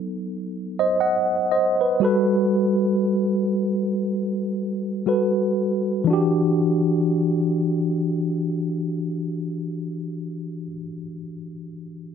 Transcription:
0.00 1.46 F#3 medium
0.00 1.47 B3 medium
0.00 1.47 D#4 medium
0.00 1.48 A4 medium
0.79 0.99 C5 medium
0.79 0.99 D#5 medium
1.00 1.49 D#5 medium
1.00 1.48 F#5 medium
1.51 1.79 C5 medium
1.51 1.79 D#5 medium
1.81 2.03 B4 medium
2.00 5.02 G3 medium
2.00 5.03 F#4 medium
2.00 5.03 A4 medium
2.05 5.04 B4 medium
5.06 6.08 G3 medium
5.06 6.08 F#4 soft
5.06 6.09 A4 soft
5.06 6.09 B4 medium
6.04 10.64 E3 medium
6.04 10.67 D4 medium
6.10 10.70 F#4 medium
6.10 10.73 G4 medium

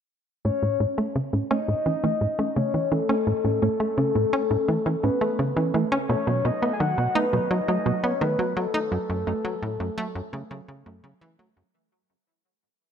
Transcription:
0.45 0.51 A2 medium
0.45 0.62 A3 medium
0.45 1.15 C#5 loud
0.63 0.78 A2 medium
0.80 0.86 A2 medium
0.80 0.93 C#4 medium
0.98 1.15 A3 medium
0.98 1.08 A3 medium
1.16 1.31 C#3 medium
1.33 1.43 A2 medium
1.33 1.46 C#4 medium
1.51 1.67 A3 medium
1.51 1.61 C#4 medium
1.51 2.58 D#5 loud
1.68 1.75 A2 medium
1.86 1.96 E3 medium
1.86 1.99 C#4 medium
2.04 2.14 E3 medium
2.04 2.20 A3 medium
2.21 2.27 A2 medium
2.39 2.49 A3 medium
2.39 2.52 C#4 medium
2.56 2.72 C#3 medium
2.56 2.73 A3 medium
2.56 2.93 C#5 loud
2.74 2.90 E3 medium
2.92 3.02 E3 medium
2.92 3.04 C#4 medium
2.92 5.05 A4 loud
3.09 3.26 A3 medium
3.09 3.16 C#4 medium
3.27 3.33 A2 medium
3.45 3.60 A2 medium
3.45 3.57 C#4 medium
3.62 3.69 A2 medium
3.62 3.79 A3 medium
3.80 3.90 A3 medium
3.98 4.13 C#3 medium
3.98 4.10 C#4 medium
4.15 4.26 A2 medium
4.15 4.32 A3 medium
4.33 4.43 C#4 medium
4.51 4.57 A2 medium
4.51 4.63 C#4 medium
4.68 4.79 E3 medium
4.68 4.85 A3 medium
4.86 4.96 E3 medium
5.03 5.10 A2 medium
5.03 5.16 C#4 medium
5.03 5.74 B4 medium
5.21 5.38 A3 medium
5.21 5.32 A3 medium
5.39 5.54 C#3 medium
5.56 5.72 E3 medium
5.56 5.69 C#4 medium
5.74 5.85 E3 medium
5.74 5.91 A3 medium
5.92 5.98 C#4 medium
6.09 6.16 B2 medium
6.09 6.22 A3 medium
6.09 6.46 C#5 loud
6.27 6.43 B2 medium
6.27 6.44 F#3 medium
6.45 6.51 B2 medium
6.45 6.73 D#5 loud
6.62 6.75 A3 medium
6.62 6.73 B3 medium
6.73 6.82 G#5 medium
6.80 6.96 D#3 medium
6.80 6.97 F#3 medium
6.80 7.17 F#5 loud
6.98 7.08 B2 medium
7.15 7.28 A3 medium
7.15 7.26 D#4 loud
7.15 7.52 B4 loud
7.33 7.39 B2 medium
7.33 7.50 F#3 medium
7.51 7.61 F#3 medium
7.51 8.05 D#5 loud
7.68 7.79 F#3 medium
7.68 7.81 A3 medium
7.86 7.92 B2 medium
7.86 8.03 F#3 medium
8.04 8.14 B3 medium
8.04 8.21 C#5 loud
8.21 8.37 D#3 medium
8.21 8.34 A3 medium
8.21 8.58 B4 medium
8.39 8.56 F#3 medium
8.39 8.54 F#3 medium
8.57 8.67 F#3 medium
8.57 11.04 A4 loud
8.74 8.87 A3 medium
8.74 8.80 D#4 medium
8.92 8.98 F#2 medium
8.92 9.09 F#3 medium
9.10 9.25 F#2 medium
9.27 9.33 F#2 medium
9.27 9.40 A3 medium
9.45 9.62 F#3 medium
9.45 9.55 F#3 medium
9.62 9.78 A2 medium
9.80 9.90 F#2 medium
9.80 9.93 A3 medium
9.98 10.14 F#3 medium
9.98 10.08 A3 loud
10.15 10.22 F#2 medium
10.33 10.43 C#3 medium
10.33 10.46 A3 medium
10.51 10.61 C#3 medium
10.51 10.67 F#3 medium
10.68 10.84 C#3 medium
10.86 11.01 F#2 medium
10.86 10.99 A3 medium
11.04 11.14 C#3 medium
11.04 11.20 F#3 medium
11.21 11.37 E3 loud
11.39 11.49 F#3 medium
11.39 11.52 A3 medium
11.57 11.63 F#2 medium
11.57 11.73 F#3 medium

